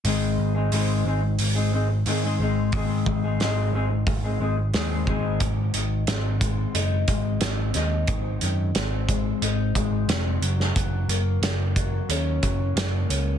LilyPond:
<<
  \new Staff \with { instrumentName = "Clean electric guitar" } { \time 4/4 \key aes \mixolydian \tempo 4 = 90 <aes, ees aes c' ees' aes'>8. <aes c' ees' aes'>16 <aes, ees aes c' ees' aes'>8 <aes c' ees' aes'>8. <aes c' ees' aes'>16 <aes c' ees' aes'>8 <aes, ees aes c' ees' aes'>16 <aes c' ees' aes'>16 <aes c' ees' aes'>8 | <aes, ees aes c' ees' aes'>8. <aes c' ees' aes'>16 <aes, ees aes c' ees' aes'>8 <aes c' ees' aes'>8. <aes c' ees' aes'>16 <aes c' ees' aes'>8 <aes, ees aes c' ees' aes'>16 <aes c' ees' aes'>16 <aes, ees aes c' ees' aes'>8 | r8 ees8 c'8 aes8 ees'8 aes8 c'8 ees'8 | aes,8 ees8 c'8 aes8 ees'8 aes8 c'8 ges8 |
ges8 bes8 bes8 ges8 des'8 ges8 bes8 des'8 | }
  \new Staff \with { instrumentName = "Picked electric bass" } { \clef bass \time 4/4 \key aes \mixolydian aes,,8 aes,,8 aes,,8 aes,,8 aes,,4 aes,8 aes,,8 | aes,,8 aes,,8 aes,,8 aes,,8 aes,,8 aes,,8 ees,8 aes,,8 | aes,,8 aes,,8 aes,,4 ges,,8 aes,,8 aes,,8 ees,8 | aes,,8 ges,8 aes,,4 aes,,8 aes,,8 f,,8 ges,,8 |
ges,,8 ges,,8 ges,,4 ees,8 ges,,8 ges,,8 des,8 | }
  \new DrumStaff \with { instrumentName = "Drums" } \drummode { \time 4/4 hho4 hho4 hho4 hho4 | <hho bd>8 bd8 <hho sn>4 <hho bd>4 <hho sn>8 bd8 | <hh bd>8 hh8 <hh sn>8 <hh bd>8 hh8 <hh bd>8 <hh sn>8 <hh sn>8 | <hh bd>8 hh8 <hh sn>8 <hh bd>8 hh8 <hh bd>8 <hh sn>8 hh16 sn16 |
<hh bd>8 hh8 <hh sn>8 <hh bd>8 hh8 <hh bd>8 <hh sn>8 hh8 | }
>>